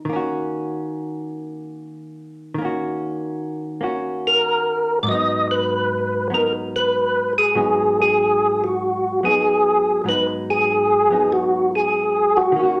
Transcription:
0.05 D#3
0.09 A#3 C#4
0.16 F#4
2.54 D#3 A#3
2.62 C#4 F#4
3.81 A#3 C#4 F#4
4.27 A#4
5.03 G#2 D5
5.08 F#3 B3 D#5
5.15 D#4
5.51 B4
6.30 F#3 B3 D#4
6.34 A#4
6.76 B4
7.38 G#4
7.55 G#2 F#3 B3 D#4
8.02 G#4
8.64 F#4
9.23 F#3 B3 D#4 G#4
10.04 G#2 F#3 B3
10.09 D#4 B4
10.50 G#4
11.10 F#3 B3 D#4
11.32 F#4
11.75 G#4
12.37 F#4
12.52 D#3
12.56 A#3 C#4
12.63 F#4

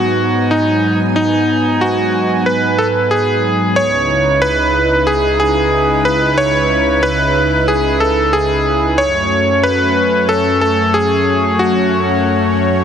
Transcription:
Already playing: G#2 F#3 B3 D#4 F#4 G#5
0.51 D#4
1.16 D#4
1.81 F#4
2.46 B4
2.78 A4
3.11 G#4
3.76 C#2 C#3 D#4 E4 B4 C#5
4.42 B4
5.07 G#4
5.40 G#4
6.05 B4
6.38 C#5
7.03 B4
7.68 G#4
8.00 A4
8.33 G#4
8.98 F#2 F#3 A3 C#4 C#5
9.63 B4
10.29 A4
10.61 A4
10.94 G#4
11.59 F#4

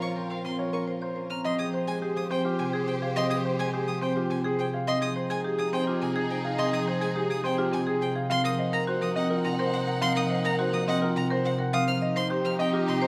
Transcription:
Already playing: A#2 C#3 F3 A#3 C4 F4 A#4
0.02 C5 C#5 C#6
0.16 C4 A#4
0.30 C5 F5
0.45 F3 C4 C6
0.59 F4 C#5
0.73 C4 A#4 C#6
0.88 C5
1.02 C5 C#5
1.16 C#4 C5
1.30 C4 A#5 F6
1.44 F3 C4 G4 C5 D#5 C6
1.59 C4 G#4 D#6
1.73 C5
1.87 G#3 G#4 G#5
2.02 G4 G#4
2.16 F3 G#4 D#6
2.30 C4 C5 G5
2.45 F4 G4
2.59 C3 C4 G#5
2.73 G#4
2.88 C4 C5 G5
3.02 G#4 F5
3.16 F3 C4 D#5 C6
3.30 C4 G#4 D#6
3.45 C5
3.59 G#3 G#4 G#5
3.73 G4 G#4
3.88 F3 G#4 D#6
4.02 C4 C5 G5
4.16 F4 G4
4.30 C3 C4 G#5
4.44 G#4
4.59 C4 C5 G5
4.73 G#4 F5
4.87 F3 C4 D#4 G#4 D#5 C6
5.01 C4 G#4 D#6
5.16 C5
5.30 G#3 G#4 G#5
5.44 G4 G#4
5.59 F3 G#4 D#6
5.73 C4 C5 G5
5.87 F4 G4
6.01 C3 C4 G#5
6.16 G#4
6.30 C4 C5 G5
6.44 G#4 F5
6.58 F3 C4 D#5 C6
6.73 C4 G#4 D#6
6.87 C5
7.01 G#3 G#4 G#5
7.16 G4 G#4
7.30 F3 G#4 D#6
7.44 C4 C5 G5
7.58 F4 G4
7.72 C3 C4 G#5
7.87 G#4
8.01 C4 C5 G5
8.15 G#4 F5
8.29 F3 C4 D#4 F5 F#5 C6
8.44 C4 A#4 D#6
8.59 C5 D#5
8.73 A#3 A#4 A#5
8.87 F#4 C5
9.02 F3 A#4 D#6
9.16 C4 D#5 F#5
9.30 F4 A#4
9.45 C3 C4 A#5
9.59 A#4 C5
9.73 C4 C5 F#5
9.87 A#4 F#5
10.01 F3 C4 F5 C6
10.16 C4 A#4 D#6
10.30 C5 D#5
10.44 A#3 A#4 A#5
10.59 F#4 C5
10.73 F3 A#4 D#6
10.87 C4 D#5 F#5
11.02 F4 A#4
11.16 C3 C4 A#5
11.30 A#4 C5
11.45 C4 C5 F#5
11.59 A#4 F#5
11.73 F3 C4 D#4 G4 F5 D#6
11.88 D#4 C5 F6
12.02 D#5
12.16 C4 C5 C6
12.30 G4 C5
12.45 F3 C5 F6
12.59 C4 D#4 D#5 G5
12.73 F4 G4
12.88 C3 C4 C6
13.02 C5

